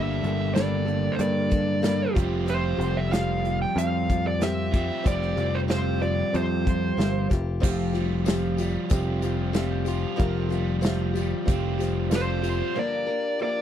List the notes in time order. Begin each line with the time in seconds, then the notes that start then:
Already playing: G1 G2 D3 G3 A#3 D4 G4 A4 E5
0.23 G1 G3 A#3 D4 A4, closed hi-hat
0.54 G2 D3 G3 A#3 D4 G4 A4 D5, snare, closed hi-hat
0.85 G3 A#3 D4 A4, closed hi-hat
1.12 C5
1.19 G2 G3 A#3 D4 G4 A4 A#4 D5, closed hi-hat
1.50 G3 A#3 D4 A4, kick, closed hi-hat
1.82 G2 D3 G3 A#3 D4 G4 A4, snare, closed hi-hat
2.14 F1 F3 G3 C4 F4 G4, kick, snare, closed hi-hat
2.19 G4
2.46 F3 C4 F4 G4 C5, closed hi-hat
2.77 F1 C4 F4 G4, closed hi-hat
2.97 E5
3.09 F3 C4 F4 G4 F5, closed hi-hat
3.14 snare
3.44 C4 F4 G4, closed hi-hat
3.62 G5
3.76 F2 F3 C4 F4 G4 F5, closed hi-hat
4.09 C4 F4 G4, kick, closed hi-hat
4.27 D5
4.39 F3 C4 F4 G4 A#4, snare, closed hi-hat
4.43 E5
4.72 F3 G3 C4 F4 G4, kick, snare, closed hi-hat
5.04 F1 F3 C4 F4 G4 D5, kick, closed hi-hat
5.22 snare
5.36 F1 C4 F4 G4, closed hi-hat
5.55 C5
5.68 F3 C4 F4 G4 C5, snare, closed hi-hat
6.00 C4 F4 G4 D5, closed hi-hat
6.33 F2 F3 C4 F4 G4 C5, closed hi-hat
6.65 C4 F4 G4, kick, closed hi-hat
6.97 G1 F3 C4 F4 G4 A#4, snare, closed hi-hat
7.30 F1 C4 F4 G4, kick, snare, closed hi-hat
7.60 F1 F3 C4 F4 G4, kick, crash
7.93 G3 C4 F4 G4, closed hi-hat, tambourine
8.25 F3 C4 F4 G4, snare, closed hi-hat, tambourine
8.57 G3 C4 F4 G4, closed hi-hat, tambourine
8.89 F1 F3 C4 F4 G4, kick, closed hi-hat, tambourine
9.22 F3 C4 F4 G4, closed hi-hat, tambourine
9.53 F3 G3 C4 F4 G4, snare, closed hi-hat, tambourine
9.85 C4 F4 G4, closed hi-hat, tambourine
10.16 F1 F3 C4 F4 G4 A#4, kick, closed hi-hat
10.20 F3
10.49 C4 F4 G4, closed hi-hat, tambourine
10.53 G3
10.81 F3 C4 F4 G4, snare, closed hi-hat, tambourine
11.14 G3 C4 F4 G4, closed hi-hat, tambourine
11.45 F1 F3 C4 F4 G4, kick, closed hi-hat, tambourine
11.79 F3 C4 F4 G4, snare, closed hi-hat, tambourine
12.10 F3 G3 C4 F4 G4 A4, snare, closed hi-hat, tambourine
12.16 C5
12.42 C4 F4 G4, closed hi-hat, tambourine
12.75 G2 D3 F3 A#3 D4 F4 G4 A#4 D5
13.07 F3 A#3 D4 A#4
13.39 F3 A#3 D4 A#4 D5